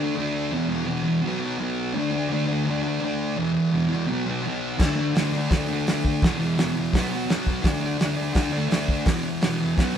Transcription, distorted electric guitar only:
Already playing: D3 D4
0.03 A3
0.15 D3 A3
0.20 D4
0.51 E2 B2
0.56 E3
0.69 E3
0.74 B2
0.86 E2 B2
0.90 E3
1.04 E3
1.09 B2
1.22 B2 F#3
1.28 B3
1.40 B3
1.45 F#3
1.57 B2 F#3
1.63 B3
1.93 D3 A3
1.99 D4
2.12 D4
2.17 A3
2.30 D3 A3
2.34 D4
2.48 D4
2.53 A3
2.65 D3 A3
2.70 D4
2.83 D4
2.88 A3
3.01 D3 A3
3.05 D4
3.36 E2 B2
3.41 E3
3.53 E3
3.59 B2
3.71 E2 B2
3.76 E3
3.89 E3
3.95 B2
4.07 B2 F#3
4.12 B3
4.26 B3
4.30 F#3
4.43 B2 F#3
4.48 B3
4.79 D3 A3
4.83 D4
4.96 D4
5.01 A3
5.15 D3 A3
5.19 D4
5.33 D4
5.38 A3
5.51 D3 A3
5.56 D4
5.68 D4
5.73 A3
5.87 D3 A3
5.92 D4
6.22 E2 B2
6.27 E3
6.39 E3
6.44 B2
6.58 E2 B2
6.63 E3
6.75 E3
6.80 B2
6.93 B2 F#3
6.98 B3
7.10 B3
7.15 F#3
7.26 B2 F#3
7.32 B3
7.63 D3 A3
7.68 D4
7.80 D4
7.86 A3
7.98 D3 A3
8.03 D4
8.16 D4
8.21 A3
8.33 D3 A3
8.38 D4
8.52 D4
8.57 A3
8.69 D3 A3
8.74 D4
9.06 E2 B2
9.10 E3
9.24 E3
9.29 B2
9.42 E2 B2
9.48 E3
9.59 E3
9.65 B2
9.77 B2 F#3
9.82 B3

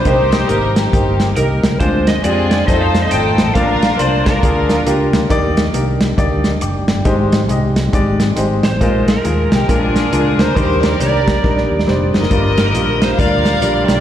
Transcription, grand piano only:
0.05 C3 A#3 D#4 G4 C5
0.49 A#3 D#4 G4 C5
0.93 A#3 D#4 G4 C5
1.37 A#3 D#4 G4 D#5
1.80 D3 G#3 D4 F4 C5
2.23 G#3 D4 F4 G4
2.67 A3 D#4 F4 C5
3.11 A3 D#4 F4 D#5
3.55 A#2 A#3 D4 F4 D5
3.98 A#3 D4 F4 D5
4.42 A#3 D4 F4 G#4
4.86 A#3 D4 F4 G4
5.29 D#3 A#3 D#4 G4 D5
5.73 A#3 D#4 G4 A#4
6.17 A#3 D#4 G4 D5
6.62 G5 D6
6.88 D5 G5
7.05 G#2 G#3 D#4 G4 C5
7.48 G#3 D#4 G4 D#5
7.93 G#3 D#4 G4 D5
8.36 G#3 D#4 G4 C5
8.81 A#2 G#3 D#4 F4 A#4
9.24 G#3 D#4 F4 G#4
9.68 A#2 G#3 D4 F4 A#4
10.12 G#3 D4 F4 A#4
10.55 D#3 G3 D4 D#4 A#4
10.99 G3 D4 D#4 A#4
11.43 G3 D4 D#4 A#4
11.87 G3 D4 D#4 C5
12.30 G2 G3 D4 F4 A#4
12.74 G3 D4 F4 A#4
13.17 G3 D4 F4 A#4
13.61 G3 D4 F4 A#4

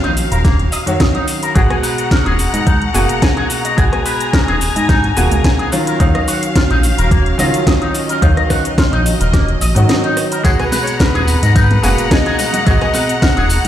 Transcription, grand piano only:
Already playing: D#3 F#3 C#4 F5
0.86 D#3 F#3 C#4 F#4
1.55 B2 G#3 F#4
2.94 B2 G#3 A#3 F#4
3.77 B2 G#3 F#4
5.16 B2 G#3 A#3 F#4
5.72 D#3 F#3 C#4 F4
5.99 D#3 F#3 C#4 F5
7.38 D#3 F#3 C#4 F4
8.21 D#3 F#3 C#4 F5
9.75 D#3 F#3 C#4 F#4
10.43 B2 G#3 F#4
11.82 B2 G#3 A#3 F#4
12.66 B2 G#3 F#4

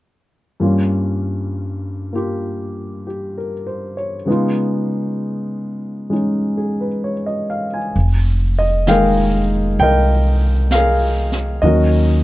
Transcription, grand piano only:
0.60 G2 G3 A#3 C#4 F4
2.13 A#3 F4 G4
3.07 G4
3.38 A#4
3.67 C5
3.97 C#5
4.25 C#3 G#3 B3
4.30 D#4 F4
6.10 G#3 C#4 D#4
6.57 G#4
6.81 B4
7.04 C#5
7.26 D#5
7.50 F5
7.74 G#5
8.59 D#5
8.87 D#3 G#3 A#3 G#4 A#4 F5 G5
9.80 A#4 D#5 G5
10.72 G#4 A#4 F5
11.62 D#3 F#3 C#4 F#4 A#4 D#5

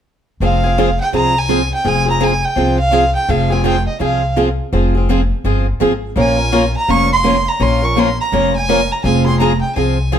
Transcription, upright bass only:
0.40 F1
1.13 C2
1.85 F1
2.56 C2
3.29 F1
4.00 C2
4.73 F1
5.44 G1
5.81 G#1
6.16 A#1
6.88 F1
7.60 A#1
8.32 F1
9.04 F1
9.76 C2

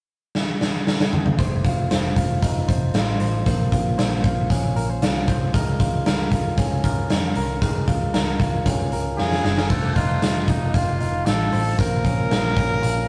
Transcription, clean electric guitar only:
1.39 A3 C5
1.65 F4
1.91 C5
2.16 F4
2.43 D#4
2.68 C5
2.95 F4
3.20 C5
3.46 A#3 C5
3.72 F4
3.98 C5
4.24 F4
4.50 C#4
4.76 A#4
4.89 C5
5.02 F4
5.28 C5
5.54 G#3 A#4
5.80 F4
6.06 A#4
6.32 F4
6.58 C#4
6.84 A#4
7.10 D#4
7.23 F4
7.36 A#4
7.62 G#3 A#4
7.88 F4
8.14 A#4
8.41 F4
8.66 C#4
8.93 A#4
9.19 F4
9.45 G#4
9.58 A#4
9.70 A3 C5
9.97 D#4
10.23 F4
10.49 D#4
10.75 F4
11.00 D#4
11.26 F4
11.53 C5
11.79 A#3 C5
12.05 C#4
12.31 F4
12.57 C#4
12.83 F4

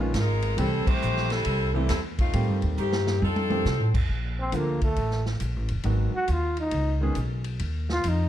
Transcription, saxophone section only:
0.17 G#3 D#4 F4 A#4
0.59 G3 C4 E4 A4
0.87 A3 E4 G4 C5
1.31 G3 C4 E4 A4
1.74 E3 A3 C4 G4
1.88 G3 C4 E4 A4
2.19 A3 C4 D#4 F4
2.79 D#3 A3 C4 G4
3.22 F3 C4 D#4 A4

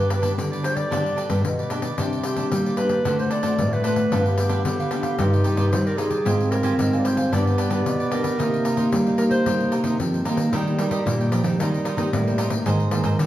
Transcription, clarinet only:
Already playing: B4
0.64 C5
0.76 D5
2.25 G4
2.77 B4
3.19 C5
3.32 D5
3.73 B4
3.84 B4
4.27 G4
4.38 G4
5.72 C5
5.86 A#4
5.97 G#4
6.51 A#4
6.99 D5
7.05 C5
7.33 D5
7.59 D5
8.12 A#4
9.18 A#4
9.31 C5

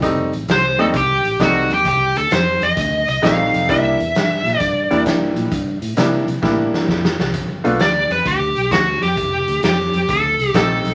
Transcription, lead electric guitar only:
0.51 C5
0.80 A4
0.97 G4
1.43 F#4
1.74 G4
1.88 G4
2.18 A4
2.32 C5
2.63 D#5
3.09 D#5
3.24 F5
3.70 E5
4.60 D5
7.81 D5
8.12 B4
8.27 G4
8.72 F#4
9.03 G4
9.65 G4
10.10 A4
10.56 A4

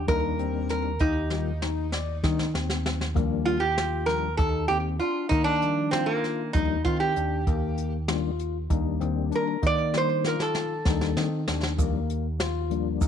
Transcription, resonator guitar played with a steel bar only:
0.08 A#4
0.70 A#4
1.00 D#4
3.45 F4
3.60 G4
4.06 A#4
4.37 A4
4.68 G4
5.00 F4
5.29 D#4
5.44 D4
5.91 C4
6.06 A#3
6.53 D#4
6.85 F4
7.00 G4
9.35 A#4
9.67 D5
9.97 C5
10.27 A#4
10.42 A4

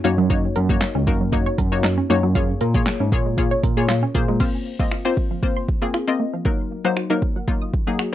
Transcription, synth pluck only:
0.04 A#3 D#4 F#4 C#5
0.30 A#3 D#4 F#4 C#5
0.69 A#3 D#4 F#4 C#5
1.07 A#3 D#4 F#4 A#4
1.33 A#3 D#4 F#4 C#5
1.72 A#3 D#4 F#4 C#5
2.10 A#3 D#4 F#4 C#5
2.35 A#3 F4 G#4 C#5
2.75 A#3 F4 G#4 C#5
3.12 A#3 F4 G#4 C#5
3.38 A#3 F4 G#4 C#5
3.77 A#3 F4 G#4 C#5
4.15 A#3 F4 G#4 C5
4.40 A#3 C4 F4 C5
4.79 A#3 C4 F4 D#5
5.05 A#3 C4 F4 C5
5.43 A#3 C4 F4 C5
5.82 A#3 C4 F4 G#4
6.08 A#3 C4 F4 D#5
6.45 F#3 A#3 D#4 A#4
6.85 F#3 A#3 D#4 C5
7.10 F#3 A#3 D#4 A#4
7.48 F#3 A#3 D#4 F4
7.87 F#3 A#3 D#4 G#4

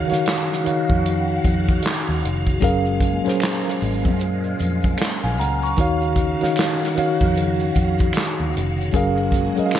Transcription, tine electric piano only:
Already playing: D#3 D#4 F#4 C#5 F5
0.08 D#3 D#4 F#4 C#5
0.12 F5
0.64 D#3 D#4 F#4 C#5 F5
2.60 F#3 C#4 G#4 A#4 F5
3.24 F#3 C#4 G#4 A#4
3.28 C5
5.24 F5 G#5
5.39 F#5 A#5
5.63 A#5 C#6
5.77 D#3 D#4 F#4 C#5 F5
6.40 D#3 D#4 F#4 C#5 F5
6.95 D#3 D#4 F#4 C#5 F5
8.93 F#3 C#4 G#4 A#4 F5
9.55 F#3 C#4 G#4 A#4 D#5
9.66 F5

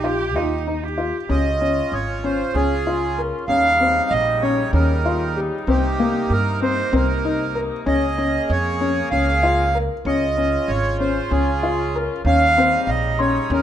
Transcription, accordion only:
Already playing: G4
1.30 D#5
1.93 C#5
2.24 C5
2.55 G#4
3.48 F5
4.10 D#5
4.42 C#5
4.73 A#4
5.68 G4
6.32 A#4
6.62 C5
6.95 A#4
7.87 D#5
8.51 C#5
9.11 F5
10.07 D#5
10.68 C#5
11.00 C5
11.31 G#4
12.26 F5
12.88 D#5
13.20 C#5
13.53 A#4

